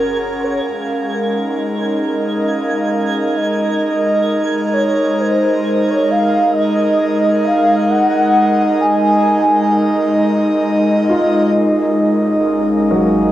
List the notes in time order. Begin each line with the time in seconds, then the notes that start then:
Already playing: F#1 C#4 F#4 G#4 A#4 C6 G#6
0.44 C#5
0.63 G#3 F5 G#6
1.17 D#4
1.56 D#5
1.74 D#5
2.47 F5
3.36 D#5
4.73 C#5
5.20 C5
5.90 C#5
6.10 F5
6.53 D#5
7.44 F5
7.90 F#5
8.81 G#5
11.09 F4
11.54 G#1 G#3 C#4
12.48 F5
12.91 F#3